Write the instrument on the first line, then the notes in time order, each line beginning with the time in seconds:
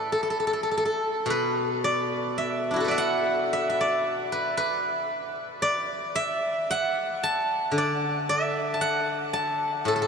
guzheng
Already playing: A2 A4 B4 D5 E5
0.12 A4
0.23 A4
0.30 A4
0.40 A4
0.47 A4
0.53 A4
0.63 A4
0.71 A4
0.77 A4
0.85 A4
1.26 B2
1.30 B4
1.84 D5
2.38 E5
2.71 D4 E4
2.76 F#4
2.80 A4
2.85 B4 D5
2.91 E5
2.98 F#5
3.53 E5
3.70 E5
3.81 D5
4.32 B4
4.57 B4
5.62 D5
6.15 E5
6.71 F#5
7.23 A5
7.72 D3
7.78 D5
8.29 E5
8.74 A5
8.81 F#5
9.33 A5
9.85 A2 A4
9.96 A4
10.02 A4